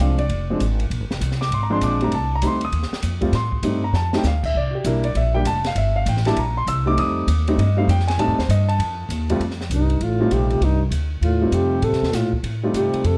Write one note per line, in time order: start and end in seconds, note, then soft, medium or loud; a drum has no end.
0.00 0.28 C2 medium
0.00 0.17 F3 medium
0.00 0.18 G#3 medium
0.00 0.18 C4 medium
0.00 0.18 D4 medium
0.00 0.19 F5 medium
0.18 0.87 D5 medium
0.18 ride soft
0.29 0.59 F1 medium
0.29 ride medium
0.50 0.60 F3 medium
0.50 0.60 G#3 medium
0.50 0.60 C4 medium
0.50 0.60 D4 medium
0.59 0.89 G#1 medium
0.59 hi-hat pedal medium
0.59 ride medium
0.80 ride soft
0.90 1.00 A#1 medium
0.90 ride medium
1.00 1.10 G#1 medium
1.10 1.20 F1 medium
1.10 snare medium
1.21 1.50 C2 medium
1.21 hi-hat pedal medium
1.21 ride medium
1.32 snare soft
1.41 1.51 D6 medium
1.41 snare soft
1.51 1.80 G#1 medium
1.51 1.62 C6 medium
1.51 ride medium
1.63 1.72 A#5 medium
1.70 1.99 F3 medium
1.70 1.99 G#3 medium
1.70 1.99 C4 medium
1.70 1.99 D4 medium
1.70 1.82 C6 medium
1.81 2.11 A#1 medium
1.81 2.01 D6 medium
1.81 hi-hat pedal medium
1.81 ride medium
2.01 2.11 G3 medium
2.01 2.12 A3 medium
2.01 2.12 C4 medium
2.01 2.12 D4 medium
2.01 2.13 A#5 medium
2.01 ride soft
2.12 2.42 C2 medium
2.12 2.32 A5 medium
2.12 ride medium
2.36 2.44 A#5 loud
2.42 2.71 D2 medium
2.42 2.60 G3 medium
2.42 2.60 A3 medium
2.42 2.60 C4 medium
2.42 2.60 D#4 medium
2.42 2.45 B5 medium
2.42 hi-hat pedal medium
2.42 ride medium
2.47 2.63 C6 medium
2.61 2.91 D#6 loud
2.61 ride soft
2.72 2.90 D#2 medium
2.72 ride medium
2.83 snare soft
2.92 muted upright bass stroke soft
2.92 snare soft
3.02 3.32 F2 medium
3.02 hi-hat pedal medium
3.02 ride medium
3.21 3.32 G3 medium
3.21 3.32 A3 medium
3.21 3.32 C4 medium
3.21 3.32 F4 medium
3.21 kick medium
3.21 ride soft
3.32 3.62 A2 medium
3.32 3.80 C6 medium
3.32 snare soft
3.32 ride medium
3.52 kick medium
3.63 3.92 G2 medium
3.63 3.81 G3 medium
3.63 3.81 A3 medium
3.63 3.82 C4 medium
3.63 3.81 D#4 medium
3.63 hi-hat pedal medium
3.63 ride medium
3.84 3.94 A#5 medium
3.93 4.23 F2 medium
3.93 4.13 A5 medium
3.93 snare soft
4.13 4.24 G3 medium
4.13 4.24 A3 medium
4.13 4.24 C4 medium
4.13 4.24 D#4 medium
4.13 4.25 G5 medium
4.13 snare medium
4.23 4.53 D2 medium
4.23 4.44 F5 medium
4.23 snare medium
4.23 hi-hat pedal medium
4.43 4.55 E5 medium
4.43 kick medium
4.43 crash medium
4.54 4.84 C2 medium
4.54 4.75 D5 medium
4.71 4.72 F#4 soft
4.75 4.85 G4 medium
4.84 5.14 B1 medium
4.84 5.02 G3 medium
4.84 5.03 A#3 medium
4.84 5.03 D4 medium
4.84 5.03 E4 medium
4.84 5.05 A#4 medium
4.84 hi-hat pedal medium
4.84 ride medium
5.04 5.15 D5 medium
5.04 ride soft
5.15 5.44 A#1 medium
5.15 5.35 E5 medium
5.15 ride medium
5.35 5.45 G3 medium
5.35 5.45 A#3 medium
5.35 5.45 D4 medium
5.35 5.45 G4 medium
5.35 5.45 G5 loud
5.45 5.75 F1 medium
5.45 5.65 A5 loud
5.45 hi-hat pedal soft
5.45 ride medium
5.64 5.77 F5 loud
5.64 snare medium
5.64 ride soft
5.75 6.05 G1 medium
5.75 5.96 E5 medium
5.75 ride medium
5.96 6.07 F5 medium
6.06 6.36 A1 loud
6.06 6.26 G5 medium
6.06 hi-hat pedal medium
6.06 ride medium
6.17 snare soft
6.25 6.36 G3 medium
6.25 6.37 A#3 medium
6.25 6.36 D4 medium
6.25 6.37 E4 medium
6.25 6.37 A5 loud
6.25 snare soft
6.25 ride soft
6.36 6.66 A#1 medium
6.36 6.57 A#5 medium
6.36 ride medium
6.57 6.68 C6 loud
6.67 6.96 C2 loud
6.67 6.87 E6 loud
6.67 hi-hat pedal medium
6.67 ride medium
6.86 7.26 G3 medium
6.86 7.26 A3 medium
6.86 7.26 C4 medium
6.86 7.26 D#4 medium
6.86 6.98 D6 loud
6.97 7.27 F2 medium
6.97 7.10 D#6 loud
6.97 ride medium
7.27 7.57 D#2 medium
7.27 hi-hat pedal medium
7.27 ride medium
7.48 7.58 G3 medium
7.48 7.58 A3 medium
7.48 7.58 C4 medium
7.48 7.58 D#4 medium
7.48 ride soft
7.57 7.87 G2 medium
7.57 7.78 D#5 medium
7.57 ride medium
7.77 7.87 G3 medium
7.77 7.88 A3 medium
7.77 7.88 C4 medium
7.77 7.88 D#4 medium
7.77 7.89 F5 loud
7.88 8.17 F2 loud
7.88 8.08 G5 medium
7.88 hi-hat pedal medium
7.88 ride medium
8.00 snare soft
8.08 8.19 G#5 loud
8.08 snare soft
8.08 ride medium
8.18 8.29 A2 loud
8.18 8.36 G3 medium
8.18 8.36 A3 medium
8.18 8.37 C4 medium
8.18 8.37 D#4 medium
8.18 8.38 A5 loud
8.18 ride medium
8.27 8.38 F2 medium
8.38 8.48 D#2 medium
8.38 8.49 C5 medium
8.38 snare medium
8.48 8.78 G2 loud
8.48 8.69 D#5 medium
8.48 hi-hat pedal medium
8.48 ride medium
8.69 9.31 A5 medium
8.69 ride soft
8.78 9.08 F2 medium
8.78 ride medium
9.09 9.39 D#2 loud
9.09 hi-hat pedal medium
9.09 ride medium
9.29 9.40 F2 medium
9.29 9.40 G3 medium
9.29 9.40 A3 medium
9.29 9.40 C4 medium
9.29 9.40 F4 medium
9.29 ride soft
9.40 9.69 F2 medium
9.40 ride medium
9.51 snare soft
9.61 snare soft
9.70 10.00 C2 medium
9.70 10.04 G2 medium
9.70 10.05 D#4 medium
9.70 hi-hat pedal medium
9.70 ride medium
9.90 ride soft
10.01 10.30 A1 medium
10.01 10.35 A2 medium
10.01 10.35 F4 medium
10.01 ride medium
10.20 10.59 G3 medium
10.20 10.60 A3 medium
10.20 10.60 C4 medium
10.20 10.60 D#4 medium
10.20 10.60 F4 medium
10.31 10.60 A#1 medium
10.31 10.65 C3 medium
10.31 10.66 G4 medium
10.31 hi-hat pedal soft
10.31 ride medium
10.50 ride soft
10.61 10.90 C2 medium
10.61 10.82 G2 medium
10.61 10.82 D#4 medium
10.61 ride medium
10.90 11.21 D2 medium
10.90 hi-hat pedal medium
10.90 ride medium
11.21 11.51 D#2 medium
11.21 11.55 A2 medium
11.21 11.56 F4 medium
11.21 ride medium
11.41 11.81 G3 medium
11.41 11.81 A3 medium
11.41 11.81 C4 medium
11.41 11.81 D#4 medium
11.41 11.81 F4 medium
11.52 11.81 F2 medium
11.52 11.85 C3 medium
11.52 11.86 G4 medium
11.52 hi-hat pedal medium
11.52 ride medium
11.82 11.93 A2 medium
11.82 12.15 C3 medium
11.82 12.17 A4 medium
11.82 ride medium
11.92 12.01 F2 medium
11.92 snare soft
12.02 12.12 D#2 medium
12.02 snare soft
12.12 12.33 A2 medium
12.12 12.42 A#2 medium
12.12 12.34 F4 medium
12.12 snare soft
12.12 hi-hat pedal medium
12.12 ride medium
12.33 kick medium
12.43 12.73 A2 medium
12.43 ride medium
12.63 13.03 G3 medium
12.63 13.03 A3 medium
12.63 13.03 C4 medium
12.63 13.03 D#4 medium
12.63 13.03 F4 medium
12.74 12.92 G2 medium
12.74 13.06 C3 medium
12.74 13.08 G4 medium
12.74 hi-hat pedal medium
12.74 ride medium
12.93 muted upright bass stroke soft
12.93 ride soft
13.04 13.18 F2 medium
13.04 13.18 C3 medium
13.04 13.18 A4 medium
13.04 ride medium